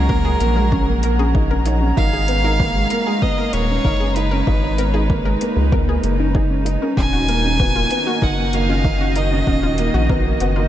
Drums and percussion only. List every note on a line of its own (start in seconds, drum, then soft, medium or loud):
0.10 kick loud
0.40 closed hi-hat medium
0.72 kick loud
1.03 closed hi-hat medium
1.35 kick loud
1.66 closed hi-hat medium
1.97 kick loud
2.28 closed hi-hat medium
2.60 kick loud
2.90 closed hi-hat medium
3.22 kick loud
3.53 closed hi-hat medium
3.85 kick loud
4.16 closed hi-hat medium
4.47 kick medium
4.78 closed hi-hat medium
5.10 kick loud
5.41 closed hi-hat medium
5.72 kick loud
6.04 closed hi-hat medium
6.35 kick loud
6.66 closed hi-hat medium
6.97 kick loud
7.28 closed hi-hat medium
7.60 kick loud
7.91 closed hi-hat medium
8.22 kick loud
8.53 closed hi-hat medium
8.84 kick loud
9.16 closed hi-hat medium
9.47 kick medium
9.78 closed hi-hat medium
10.09 kick loud
10.40 closed hi-hat medium